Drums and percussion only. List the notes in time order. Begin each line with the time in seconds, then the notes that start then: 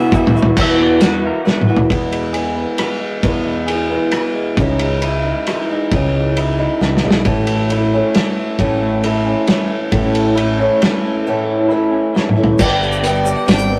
0.12 kick, shaker
0.27 floor tom
0.36 shaker
0.42 floor tom
0.57 kick, crash
1.01 snare, closed hi-hat
1.47 snare
1.61 mid tom
1.77 floor tom
1.90 kick, ride
2.12 ride
2.34 ride
2.78 cross-stick, ride
3.23 kick, ride
3.68 ride
4.11 cross-stick, ride
4.57 kick, ride
4.79 ride
5.02 ride
5.47 cross-stick, ride
5.92 kick, ride
6.37 ride
6.81 snare
6.97 snare
7.11 snare
7.25 kick, ride
7.47 ride
7.70 ride
8.15 snare, ride
8.59 kick, ride
9.04 ride
9.47 snare, ride
9.92 kick, ride
10.15 ride
10.37 ride
10.82 snare, ride
12.16 snare
12.29 mid tom
12.44 floor tom
12.59 kick, crash, shaker
12.82 shaker
12.92 shaker
13.04 closed hi-hat
13.15 shaker
13.26 shaker
13.48 snare, closed hi-hat, shaker
13.58 shaker